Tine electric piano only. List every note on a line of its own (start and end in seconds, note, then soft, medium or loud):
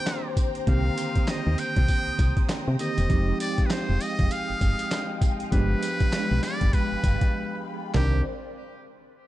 0.00 0.65 D#3 medium
0.00 0.63 A#3 medium
0.00 0.64 C4 medium
0.00 0.64 D4 medium
0.00 0.64 G4 medium
0.67 2.76 D3 medium
0.67 2.75 D#3 medium
0.67 2.75 A#3 medium
0.67 2.76 C4 medium
0.67 2.76 G4 medium
2.80 3.10 D3 soft
2.80 3.10 D#3 medium
2.80 3.10 A#3 soft
2.80 3.09 C4 soft
2.80 3.10 G4 medium
3.09 5.48 F3 medium
3.09 3.18 G3 medium
3.09 5.48 C4 medium
3.09 5.49 D#4 medium
3.09 5.49 G4 medium
3.16 5.51 G#3 medium
5.51 7.90 F3 medium
5.51 7.91 G#3 medium
5.51 7.91 B3 medium
5.51 7.91 D4 medium
5.51 7.91 G4 medium
7.95 8.23 D#3 medium
7.95 8.23 C4 medium
7.95 8.23 D4 medium
7.95 8.23 A#4 medium